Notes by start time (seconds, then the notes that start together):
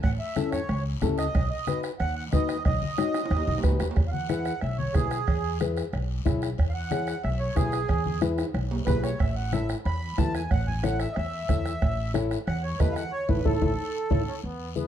0.03 A1 F#5, bombo low, bombo rim, cowbell, long guiro
0.19 E5
0.36 C#4 E4 A4, bombo rim, cowbell, high conga, short guiro
0.52 C#5, bombo rim, low conga, short guiro
0.69 C#2, bombo rim, cowbell, long guiro
1.01 C#2 C#4 E4 A4, bombo low, bombo rim, cowbell, high conga, low conga, low timbale, short guiro
1.18 D#5, bombo rim, short guiro
1.35 B1, bombo low, bombo rim, cowbell, long guiro
1.50 D#5
1.67 D#4 F#4 B4, bombo rim, cowbell, high conga, short guiro
1.83 bombo rim, short guiro
1.99 D#2 F#5, bombo rim, cowbell, high conga, long guiro
2.16 F#5
2.32 D#2 D#4 F#4 B4 D#5, bombo low, bombo rim, cowbell, high conga, short guiro
2.49 bombo rim, short guiro
2.65 B1 D#5, bombo low, bombo rim, cowbell, high conga, long guiro
2.82 high conga
2.98 D#4 F#4 C#5, bombo rim, cowbell, high conga, short guiro
3.14 bombo rim, high timbale, short guiro
3.26 high timbale
3.31 D#2, bombo rim, cowbell, low conga, long guiro
3.37 low timbale
3.47 B1, low conga, high timbale
3.58 low timbale
3.63 C#2 D#4 F#4 B4, bombo low, bombo rim, cowbell, short guiro
3.69 low timbale
3.80 D#2, bombo rim, low conga, low timbale, short guiro
3.91 low timbale
3.96 E2, bombo low, bombo rim, cowbell, high conga, long guiro
4.08 F5
4.12 F#5, high conga
4.29 E4 G#4 B4, bombo rim, cowbell, high conga, short guiro
4.45 bombo rim, short guiro
4.61 B1 E5, bombo rim, cowbell, high conga, long guiro
4.78 C#5, high conga
4.94 B1 E4 G#4 B4, bombo low, bombo rim, cowbell, high conga, low timbale, short guiro
5.11 bombo rim, short guiro
5.27 E2, bombo low, bombo rim, cowbell, long guiro
5.60 E4 G#4 B4, bombo rim, cowbell, high conga, short guiro
5.77 bombo rim, short guiro
5.93 B1, bombo rim, cowbell, high conga, long guiro
6.25 B1 E4 G#4 C#5, bombo low, bombo rim, cowbell, high conga, low conga, short guiro
6.42 bombo rim, short guiro
6.58 E2, bombo low, bombo rim, cowbell, long guiro
6.69 F5
6.74 F#5
6.91 E4 G#4 C#5, bombo rim, cowbell, high conga, short guiro
7.07 bombo rim, short guiro
7.23 B1 E5, bombo rim, cowbell, high conga, long guiro
7.39 C#5
7.56 B1 E4 G#4 B4, bombo low, bombo rim, cowbell, high conga, low timbale, short guiro
7.72 bombo rim, short guiro
7.89 E2, bombo low, bombo rim, cowbell, long guiro
8.06 high conga, low conga
8.21 E4 G#4 B4, bombo rim, cowbell, high conga, short guiro
8.38 bombo rim, high timbale, short guiro
8.54 B1, bombo rim, cowbell, high conga, long guiro
8.71 low timbale
8.86 B1 E4 G#4 B4, bombo low, bombo rim, cowbell, high conga, low conga, low timbale, short guiro
9.03 C#5, bombo rim, low timbale, short guiro
9.19 A1 E5, bombo low, bombo rim, cowbell, long guiro
9.36 F#5
9.52 E4 A4 C#5 E5, bombo rim, cowbell, high conga, short guiro
9.69 bombo rim, short guiro
9.85 E2 B5, bombo rim, cowbell, high conga, long guiro
10.18 E2 E4 A4 B4 A5, bombo low, bombo rim, cowbell, high conga, low timbale, short guiro
10.34 G#5, bombo rim, short guiro
10.51 A1 F#5, bombo low, bombo rim, cowbell, long guiro
10.67 G#5, low conga
10.83 E4 A4 C#5 F#5, bombo rim, cowbell, high conga, short guiro
11.00 E5, bombo rim, short guiro
11.13 D#5, bombo rim, long guiro
11.17 E2 E5, cowbell, high conga
11.49 E2 E4 A4 C#5, bombo low, bombo rim, cowbell, high conga, low conga, short guiro
11.66 bombo rim, short guiro
11.82 A1, bombo low, bombo rim, cowbell, long guiro
12.14 E4 A4 C#5, bombo rim, cowbell, high conga, short guiro
12.31 bombo rim, short guiro
12.47 E2 F#5, bombo rim, cowbell, high conga, long guiro
12.63 C#5
12.80 E2 E4 A4 B4 D#5, bombo low, bombo rim, cowbell, high conga, low timbale, short guiro
12.92 F5
12.96 F#5, bombo rim, short guiro
13.12 C#5
13.29 A1 E4 A4 B4 C#5, bombo low, high conga, high timbale, long guiro
13.45 A1 E4 A4 C#5, bombo low, high conga, high timbale, long guiro
13.61 A1 E4 A4 C#5, bombo low, high conga, high timbale, long guiro
14.10 A1 E4 A4 C#5, bombo low, high conga, high timbale, long guiro
14.27 C#4
14.43 E2 B3, high conga, long guiro
14.75 B3 E4 G#4 B4, high conga, short guiro